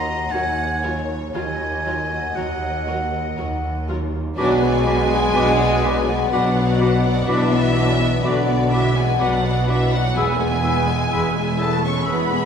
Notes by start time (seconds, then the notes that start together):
Already playing: D#2 D#3 A#3 D#4 A#4 D#5 A#5
0.08 F#4
0.32 D#2 F#3 D#4 F#4 A#4 F#5 G#5
0.57 A#3
0.82 F#3 D#4 F4 A#4 C#5
1.08 A#3
1.33 D#2 D#3 F#3 F4 A#4 D#5 G#5
1.59 D#4
1.84 F#3 A#3 F4 A#4
2.10 F#4
2.35 D#2 F#3 F#4 A#4 F#5
2.60 F#4
2.86 F#3 F#4 A#4
3.11 F#4
3.36 D#2 F#3 D#4 F#4 A#4
3.62 A#3
3.88 F#3 D#4 F4 A#4
4.14 A#3
4.37 B1 B2 F#3 G#3 D4 F#4 B4 G#5 D6
4.63 F#3 B3 F#4 D5
4.85 F#3 B3 D4 F#4 B4 D6
5.09 B3 D4 F#4 D5
5.33 B1 B2 F#3 D4 F#4 B4 D6
5.59 B3 F#4 B4 D5
5.83 F#3 D4 F#4 B4 D5 D6
6.09 B3 F#4 D5 F#5
6.31 B1 B2 F#3 D4 F#4 B4 D5 F#5 D6
6.56 B3 F#4 B4 D5
6.80 F#3 D4 F#4 B4 D6
7.04 B3 D4 F#4 D5
7.27 B1 B2 E3 F#3 D4 F#4 B4 E5 D6
7.52 F#3 B3 F#4 D5
7.75 F#3 B3 D4 F#4 B4 D6
8.00 B3 D4 F#4 D5
8.23 B1 B2 D3 F#3 D4 F#4 B4 D5 D6
8.47 B3 F#4 B4 D5
8.70 E3 F#3 D4 F#4 B4 D5 E5 D6
8.94 B3 F#4 D5 F#5 G#5
8.99 G#3
9.18 B1 B2 F#3 D4 F#4 B4 D5 F#5 D6
9.43 B3 F#4 B4 D5
9.67 E3 F#3 D4 F#4 B4 E5 D6
9.90 B3 D4 F#4 F#5
9.94 F#3 D5
10.14 E1 E2 G#3 B3 E4 G#4 B4 G#5 E6
10.18 B4
10.39 B2 G#3 B3 G#4 E5
10.63 B3 E4 G#4 B4 E6
10.88 G#3 B3 E4 G#4 E5
11.11 E1 E2 B3 E4 G#4 B4 E6
11.35 G#3 B3
11.40 G#4 E5
11.58 A3 B3 E4 G#4 B4 A5 E6
11.62 B4
11.82 G#3 B3 C#4 G#5 C#6
11.86 G#4 E5
12.06 E1 E2 B3 E4 G#4 B4 E5 B5 E6
12.10 B3 B4
12.29 G#3 B3
12.34 G#4 E5